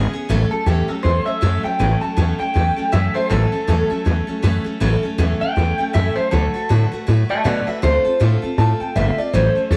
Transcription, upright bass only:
0.29 0.44 A1 medium
0.66 0.82 E2 medium
0.89 muted upright bass stroke medium
1.04 1.20 E2 medium
1.27 muted upright bass stroke medium
1.42 1.57 F#2 medium
1.65 muted upright bass stroke medium
1.80 1.95 A1 medium
2.03 muted upright bass stroke medium
2.17 2.32 E2 medium
2.40 muted upright bass stroke medium
2.56 2.71 E2 medium
2.78 muted upright bass stroke medium
2.93 3.08 F#2 medium
3.15 muted upright bass stroke medium
3.30 3.46 A1 loud
3.53 muted upright bass stroke medium
3.68 3.83 E2 medium
3.90 muted upright bass stroke medium
4.06 4.21 E2 loud
4.29 muted upright bass stroke medium
4.43 4.59 F#2 medium
4.66 muted upright bass stroke medium
4.81 4.96 A1 loud
5.03 muted upright bass stroke medium
5.18 5.34 E2 medium
5.41 muted upright bass stroke medium
5.57 5.72 E2 medium
5.80 muted upright bass stroke medium
5.95 6.10 F#2 medium
6.17 muted upright bass stroke medium
6.33 6.48 D2 loud
6.55 muted upright bass stroke medium
6.70 6.85 A2 medium
6.93 muted upright bass stroke medium
7.08 7.23 A2 medium
7.30 muted upright bass stroke medium
7.45 7.60 B2 medium
7.68 muted upright bass stroke medium
7.83 7.98 D2 medium
8.05 muted upright bass stroke medium
8.21 8.36 A2 medium
8.43 muted upright bass stroke medium
8.58 8.73 A2 loud
8.81 muted upright bass stroke medium
8.95 9.11 G1 medium
9.18 muted upright bass stroke medium
9.33 9.49 A1 medium
9.56 muted upright bass stroke medium
9.71 9.77 E2 medium

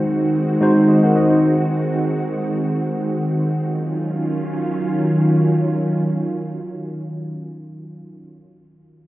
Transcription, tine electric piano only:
0.00 0.61 G#3 medium
0.00 0.61 D#4 medium
0.00 0.62 F#4 medium
0.00 0.63 C5 loud
0.61 1.26 G#3 medium
0.61 0.88 D#4 medium
0.61 0.88 F#4 medium
0.61 0.89 C5 loud
0.89 1.03 F#4 medium
0.89 1.02 D#5 medium
1.03 1.15 A#4 medium
1.03 1.14 F#5 medium
1.16 1.29 F#4 medium
1.16 1.29 D#5 medium
1.30 1.56 D#4 medium
1.30 1.55 C5 medium

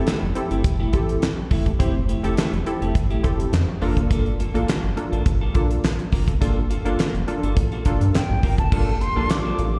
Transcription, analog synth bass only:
0.22 0.33 F1 medium
0.51 0.62 G1 medium
0.64 0.88 F1 loud
0.94 1.17 A1 medium
1.51 1.75 E1 medium
1.80 2.16 F1 medium
2.24 2.35 F1 medium
2.53 2.64 E1 medium
2.82 2.93 F1 medium
2.95 3.19 G1 loud
3.24 3.48 F1 medium
3.53 3.65 F2 loud
3.82 3.94 G1 medium
3.97 4.08 F#1 medium
4.11 4.47 G1 loud
4.55 4.66 A1 medium
4.84 4.95 G1 medium
5.12 5.23 A1 medium
5.26 5.50 G1 loud
5.55 5.79 A#1 medium
6.13 6.36 F#1 medium
6.42 6.78 G1 loud
6.85 6.96 G1 medium
7.14 7.25 F1 medium
7.43 7.54 G1 medium
7.57 7.69 A1 loud
7.86 7.98 G1 medium
8.01 8.12 G2 medium
8.30 8.41 A1 loud
8.43 8.56 G1 medium
8.58 8.70 F#1 medium
8.72 9.08 G1 loud
9.16 9.27 A#1 medium
9.59 9.79 A1 medium

